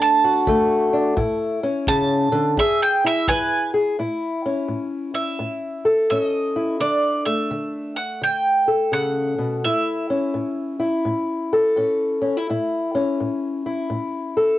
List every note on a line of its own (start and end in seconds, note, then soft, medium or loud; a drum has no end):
0.00 0.42 D3 medium
0.00 0.47 A3 medium
0.00 0.92 D4 medium
0.00 1.37 A5 loud
0.24 1.18 F#4 medium
0.47 1.12 D3 medium
0.47 1.63 A3 medium
0.47 kick medium
0.93 1.15 D4 medium
1.17 1.82 A2 medium
1.17 2.55 E4 medium
1.17 kick medium
1.63 2.55 C#4 medium
1.87 2.32 C#3 medium
1.87 2.56 A5 loud
1.87 kick medium
2.32 2.58 D3 medium
2.57 3.23 E3 medium
2.57 3.73 G#4 medium
2.57 2.81 E5 loud
2.57 kick medium
2.82 3.05 G5 medium
3.05 3.96 E4 medium
3.05 3.28 E5 loud
3.28 3.94 E3 medium
3.28 3.70 B4 loud
3.28 3.72 G#5 loud
3.28 kick medium
3.74 3.96 G#4 medium
3.99 4.64 A2 medium
3.99 5.13 E4 medium
4.46 6.10 C#4 medium
4.68 5.34 A2 medium
5.14 6.55 E4 medium
5.14 6.10 E5 medium
5.39 6.05 A2 medium
5.85 8.67 A4 medium
6.10 6.76 A2 medium
6.10 6.78 C#4 medium
6.10 6.21 E5 medium
6.21 6.80 D#5 medium
6.56 6.78 E4 medium
6.80 7.46 D3 medium
6.80 7.97 D4 medium
6.80 7.25 D5 medium
7.25 10.10 A3 medium
7.25 7.99 E5 medium
7.51 8.17 D3 medium
7.96 8.23 F#5 medium
8.22 8.88 D3 medium
8.22 8.93 G5 loud
8.68 11.52 A4 medium
8.92 9.38 C#3 medium
8.92 9.66 F#5 loud
9.38 9.64 B2 medium
9.64 10.30 A2 medium
9.64 10.79 E4 medium
9.64 11.02 E5 medium
10.10 11.76 C#4 medium
10.34 11.00 A2 medium
10.80 12.21 E4 medium
11.05 11.71 A2 medium
11.53 14.36 A4 medium
11.76 12.42 A2 medium
11.76 12.20 C#4 medium
12.22 12.37 C#4 medium
12.37 12.49 E4 medium
12.50 13.15 A2 medium
12.50 13.65 E4 medium
12.95 14.59 C#4 medium
13.20 13.85 A2 medium
13.66 14.59 E4 medium
13.90 14.56 A2 medium
14.37 14.59 A4 medium